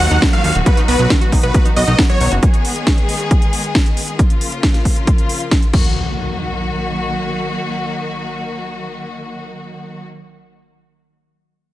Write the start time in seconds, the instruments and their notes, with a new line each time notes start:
Already playing: string section D#3 F#3 A#3 F#4, downlifter
0.00 analog synth bass D#2, supersaw synth F#5
0.11 analog synth bass D#2, synth pluck D#4, closed hi-hat
0.22 synth pluck A#3, kick, snare, closed hi-hat
0.33 synth pluck F#3, supersaw synth F5, closed hi-hat
0.44 analog synth bass D#2, synth pluck D#3, open hi-hat
0.55 analog synth bass D#1, synth pluck F#4, closed hi-hat
0.66 string section D#3 B3, synth pluck F#4, supersaw synth B4, kick, closed hi-hat
0.77 synth pluck D#4, closed hi-hat
0.88 analog synth bass B1, synth pluck B3, supersaw synth B4, open hi-hat
0.99 analog synth bass B1, synth pluck F#3, closed hi-hat
1.10 synth pluck D#3, kick, snare, closed hi-hat
1.21 synth pluck F#4, closed hi-hat
1.32 analog synth bass B1, synth pluck D#4, kick, open hi-hat
1.43 analog synth bass B1, synth pluck B3, supersaw synth B4, closed hi-hat
1.54 synth pluck F#3, kick, closed hi-hat
1.65 synth pluck D#4, closed hi-hat
1.76 analog synth bass B1, synth pluck F#4, supersaw synth D#5, open hi-hat
1.87 analog synth bass B1, synth pluck D#4, closed hi-hat
1.98 synth pluck B3, kick, snare, closed hi-hat
2.10 synth pluck F#3, supersaw synth C#5, closed hi-hat
2.21 analog synth bass B1, synth pluck D#3, open hi-hat
2.32 analog synth bass F#1, synth pluck F#4, closed hi-hat
2.43 string section D#3 G#3 G#4, kick, closed hi-hat
2.54 closed hi-hat
2.65 open hi-hat
2.76 closed hi-hat
2.87 kick, snare, closed hi-hat
2.98 closed hi-hat
3.09 open hi-hat
3.20 closed hi-hat
3.31 kick, closed hi-hat
3.42 closed hi-hat
3.53 open hi-hat
3.64 closed hi-hat
3.75 kick, snare, closed hi-hat
3.86 closed hi-hat
3.97 open hi-hat
4.08 closed hi-hat
4.19 string section C#3 F3 A#3 F4, kick, closed hi-hat
4.30 closed hi-hat
4.41 open hi-hat
4.52 closed hi-hat
4.63 kick, snare, closed hi-hat
4.74 snare, closed hi-hat
4.85 kick, open hi-hat
4.96 closed hi-hat
5.07 kick, closed hi-hat
5.18 closed hi-hat
5.29 open hi-hat
5.40 closed hi-hat
5.51 kick, snare, closed hi-hat
5.62 closed hi-hat
5.73 string section D#3 F#3 A#3 F#4, kick, crash, impact